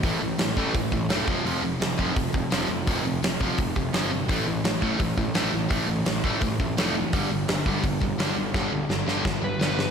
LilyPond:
<<
  \new Staff \with { instrumentName = "Lead electric guitar" } { \time 4/4 \key a \minor \tempo 4 = 169 r1 | r1 | r1 | r1 |
r1 | r1 | r2 r8 b'4. | }
  \new Staff \with { instrumentName = "Distorted electric guitar" } { \clef bass \time 4/4 \key a \minor <a, e a>8 <a, e>8 <a, e>8 <a, e a>8 <a, e>8 <a, e>8 <a, e a>8 <f, c f>8 | <f, c f>8 <f, c>8 <f, c>8 <f, c f>8 <f, c>8 <f, c>8 <f, c f>8 <f, c>8 | <f, c f>8 <f, c>8 <f, c>8 <f, c f>8 <f, c>8 <f, c>8 <f, c f>8 <f, c>8 | <a, e a>8 <a, e>8 <a, e>8 <a, e a>8 <a, e>8 <a, e>8 <a, e a>8 <a, e>8 |
<a, e a>8 <a, e>8 <a, e>8 <a, e a>8 <a, e>8 <a, e>8 <a, e a>8 <a, e>8 | <g, d g>8 <g, d>8 <g, d>8 <g, d g>8 <g, d>8 <g, d>8 <g, d g>8 <g, d>8 | <g, d g>8 <g, d>8 <g, d>8 <g, d g>8 <g, d>8 <g, d>8 <g, d g>8 <g, d>8 | }
  \new Staff \with { instrumentName = "Distorted electric guitar" } { \clef bass \time 4/4 \key a \minor <a, e a>8 <a, e>8 <a, e>8 <a, e a>8 <a, e>8 <a, e>8 <a, e a>8 <f, c f>8 | <f, c f>8 <f, c>8 <f, c>8 <f, c f>8 <f, c>8 <f, c>8 <f, c f>8 <f, c>8 | <f, c f>8 <f, c>8 <f, c>8 <f, c f>8 <f, c>8 <f, c>8 <f, c f>8 <f, c>8 | <a, e a>8 <a, e>8 <a, e>8 <a, e a>8 <a, e>8 <a, e>8 <a, e a>8 <a, e>8 |
<a, e a>8 <a, e>8 <a, e>8 <a, e a>8 <a, e>8 <a, e>8 <a, e a>8 <a, e>8 | <g, d g>8 <g, d>8 <g, d>8 <g, d g>8 <g, d>8 <g, d>8 <g, d g>8 <g, d>8 | <g, d g>8 <g, d>8 <g, d>8 <g, d g>8 <g, d>8 <g, d>8 <g, d g>8 <g, d>8 | }
  \new Staff \with { instrumentName = "Picked electric bass" } { \clef bass \time 4/4 \key a \minor a,,8 a,,8 a,,8 a,,8 a,,8 a,,8 e,,8 f,,8 | f,,8 f,,8 f,,8 f,,8 f,,8 f,,8 f,,8 f,,8 | f,,8 f,,8 f,,8 f,,8 f,,8 f,,8 g,,4 | a,,8 a,,8 a,,8 a,,8 a,,8 a,,8 a,,8 a,,8 |
a,,8 a,,8 a,,8 a,,8 a,,8 a,,8 f,,4 | g,,8 g,,8 g,,8 g,,8 g,,8 g,,8 g,,8 g,,8 | g,,8 g,,8 g,,8 g,,8 g,,8 g,,8 g,,4 | }
  \new DrumStaff \with { instrumentName = "Drums" } \drummode { \time 4/4 <hho bd>4 <hho sn>8 bd8 <hho bd>8 bd8 <hho sn>8 bd8 | hho4 <hho sn>8 bd8 <hho bd>8 bd8 <hho sn>4 | <hho bd>4 <hho sn>8 bd8 <hho bd>8 bd8 <hho sn>4 | <hho bd>4 <hho sn>8 bd8 <hho bd>8 bd8 <hho sn>4 |
<hho bd>4 <hho sn>8 bd8 <hho bd>8 bd8 <hho sn>4 | <hho bd>4 <hho sn>8 bd8 <hho bd>8 bd8 <hho sn>4 | <bd sn>4 sn8 sn8 <bd sn>4 sn8 sn8 | }
>>